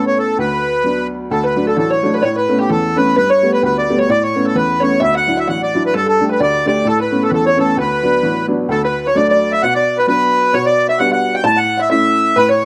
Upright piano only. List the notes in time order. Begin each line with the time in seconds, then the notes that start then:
Already playing: A2 A3 B3 C#4
0.39 D2
0.84 F#3 B3 D4
1.31 D2
1.56 F#3 A3 D4
1.77 A1
2.03 F#3 A3 D4
2.24 A2
2.49 A3 B3 C#4
2.70 E2
2.96 A3 B3 C#4
3.17 G2
3.42 G3 A3 B3
3.63 D2
3.89 G3 A3 B3
4.09 A2
4.35 A3 B3 C#4
4.55 E2
4.81 A3 B3 C#4
5.01 D2
5.27 F#3 D4 E4
5.49 A1
5.74 F#3 D4 E4
5.95 G2
6.21 A3 D4 G4
6.40 D2
6.66 A3 D4 G4
6.85 A2
7.11 A3 B3 C#4
7.31 E2
7.57 A3 B3 C#4
7.77 D2
8.03 F#3 B3 D4
8.23 A1
8.48 F#3 B3 D4
8.69 D2
9.15 F#3 A3 D4
9.63 B2
10.07 F#3 B3 D4
10.53 B2
10.99 G3 B3 D4
11.44 A2
11.90 A3 C#4 E4
12.36 A2